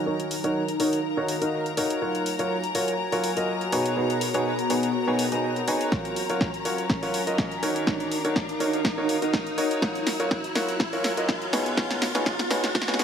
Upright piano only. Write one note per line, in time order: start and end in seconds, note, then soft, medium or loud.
0.06 0.33 D#3 medium
0.06 0.34 D#4 medium
0.06 0.34 F#4 medium
0.06 0.34 A#4 medium
0.06 0.33 C#5 medium
0.44 0.60 D#3 medium
0.44 0.60 D#4 medium
0.44 0.60 F#4 medium
0.44 0.60 A#4 medium
0.44 0.60 C#5 medium
0.80 0.97 D#3 medium
0.80 0.97 D#4 medium
0.80 0.97 F#4 medium
0.80 0.97 A#4 medium
0.80 0.97 C#5 medium
1.17 1.33 D#3 medium
1.17 1.33 D#4 medium
1.17 1.33 F#4 medium
1.17 1.33 A#4 medium
1.17 1.33 C#5 loud
1.42 1.68 D#3 medium
1.42 1.68 D#4 medium
1.42 1.68 F#4 medium
1.42 1.68 A#4 medium
1.42 1.68 D#5 medium
1.77 1.98 D#4 medium
1.77 1.98 F#4 medium
1.77 1.98 A#4 medium
1.77 1.98 C#5 loud
2.02 2.29 F#3 medium
2.02 2.29 F4 medium
2.02 2.29 F#4 medium
2.02 2.29 A#4 medium
2.02 2.29 C#5 medium
2.39 2.55 F#3 medium
2.39 2.55 F4 medium
2.39 2.55 F#4 medium
2.39 2.55 A#4 medium
2.39 2.55 C#5 loud
2.75 2.92 F#3 medium
2.75 2.92 F4 medium
2.75 2.92 F#4 medium
2.75 2.92 A#4 medium
2.75 2.92 C#5 medium
3.12 3.29 F#3 medium
3.12 3.29 F4 medium
3.12 3.29 F#4 medium
3.12 3.29 A#4 medium
3.12 3.29 C#5 loud
3.37 3.63 F#3 medium
3.37 3.63 F4 medium
3.37 3.63 F#4 medium
3.37 3.63 A#4 medium
3.37 3.63 D#5 medium
3.72 3.93 B2 medium
3.72 3.93 D#4 medium
3.72 3.93 G#4 medium
3.72 3.93 B4 medium
3.72 3.93 C#5 loud
3.97 4.24 B2 medium
3.97 4.24 D#4 medium
3.97 4.24 G#4 medium
3.97 4.24 B4 medium
3.97 4.24 C#5 medium
4.34 4.50 B2 medium
4.34 4.50 D#4 medium
4.34 4.51 G#4 medium
4.34 4.50 B4 medium
4.34 4.50 C#5 loud
4.70 4.87 B2 medium
4.70 4.87 D#4 medium
4.70 4.87 G#4 medium
4.70 4.87 B4 medium
4.70 4.87 C#5 medium
5.07 5.24 B2 medium
5.07 5.24 D#4 medium
5.07 5.24 G#4 medium
5.07 5.24 B4 medium
5.07 5.24 C#5 loud
5.32 5.59 B2 medium
5.32 5.58 D#4 medium
5.32 5.59 G#4 medium
5.32 5.59 B4 medium
5.32 5.59 D#5 medium
5.68 5.89 D#4 medium
5.68 5.89 G#4 medium
5.68 5.89 B4 medium
5.68 5.89 C#5 loud
5.92 6.19 F#3 medium
5.92 6.19 F4 medium
5.92 6.19 F#4 medium
5.92 6.19 A#4 medium
5.92 6.19 C#5 medium
6.29 6.46 F#3 medium
6.29 6.46 F4 medium
6.29 6.46 F#4 medium
6.29 6.46 A#4 medium
6.29 6.46 C#5 medium
6.65 6.82 F#3 medium
6.65 6.82 F4 medium
6.65 6.82 F#4 medium
6.65 6.82 A#4 medium
6.65 6.82 C#5 medium
7.03 7.19 F#3 medium
7.03 7.19 F4 medium
7.03 7.19 F#4 medium
7.03 7.19 A#4 medium
7.03 7.19 C#5 medium
7.27 7.54 F#3 medium
7.27 7.54 F4 medium
7.27 7.54 F#4 medium
7.27 7.54 A#4 medium
7.27 7.54 D#5 medium
7.63 7.84 D#3 medium
7.63 7.84 D#4 medium
7.63 7.84 F#4 medium
7.63 7.84 A#4 medium
7.63 7.84 C#5 loud
7.87 8.14 D#3 medium
7.87 8.14 D#4 medium
7.87 8.14 F#4 medium
7.87 8.14 A#4 medium
7.87 8.14 C#5 medium
8.25 8.41 D#3 medium
8.25 8.41 D#4 medium
8.25 8.41 F#4 medium
8.25 8.41 A#4 medium
8.25 8.41 C#5 loud
8.60 8.78 D#3 medium
8.60 8.78 D#4 medium
8.60 8.78 F#4 medium
8.60 8.78 A#4 medium
8.60 8.78 C#5 medium
8.98 9.14 D#3 medium
8.98 9.14 D#4 medium
8.98 9.14 F#4 medium
8.98 9.14 A#4 medium
8.98 9.14 C#5 loud
9.22 9.49 D#3 medium
9.22 9.49 D#4 medium
9.22 9.49 F#4 medium
9.22 9.49 A#4 medium
9.22 9.49 D#5 medium
9.58 9.79 D#4 medium
9.58 9.79 F#4 medium
9.58 9.79 A#4 medium
9.58 9.79 C#5 loud
9.82 10.09 F#3 medium
9.82 10.09 F4 medium
9.82 10.09 F#4 medium
9.82 10.09 A#4 medium
9.82 10.09 C#5 medium
10.20 10.36 F#3 medium
10.20 10.36 F4 medium
10.20 10.36 F#4 medium
10.20 10.36 A#4 medium
10.20 10.36 C#5 loud
10.55 10.73 F#3 medium
10.55 10.73 F4 medium
10.55 10.73 F#4 medium
10.55 10.73 A#4 medium
10.55 10.73 C#5 medium
10.93 11.09 F#3 medium
10.93 11.09 F4 medium
10.93 11.09 F#4 medium
10.93 11.09 A#4 medium
10.93 11.09 C#5 loud
11.17 11.44 F#3 medium
11.17 11.44 F4 medium
11.17 11.44 F#4 medium
11.17 11.44 A#4 medium
11.17 11.44 D#5 medium
11.53 11.74 B2 medium
11.53 11.74 D#4 medium
11.53 11.74 G#4 medium
11.53 11.74 B4 medium
11.53 11.74 C#5 loud
11.77 12.04 B2 medium
11.77 12.04 D#4 medium
11.77 12.04 G#4 medium
11.77 12.04 B4 medium
11.77 12.04 C#5 medium
12.15 12.31 B2 medium
12.15 12.31 D#4 medium
12.15 12.31 G#4 medium
12.15 12.31 B4 medium
12.15 12.31 C#5 loud
12.50 12.68 B2 medium
12.50 12.68 D#4 medium
12.50 12.68 G#4 medium
12.50 12.68 B4 medium
12.50 12.68 C#5 medium
12.88 12.97 B2 medium
12.88 12.97 D#4 medium
12.88 12.97 G#4 medium
12.88 12.97 B4 medium
12.88 12.97 C#5 loud
12.99 13.04 B2 medium
12.99 13.04 D#4 medium
12.99 13.04 G#4 medium
12.99 13.04 B4 medium
12.99 13.04 C#5 loud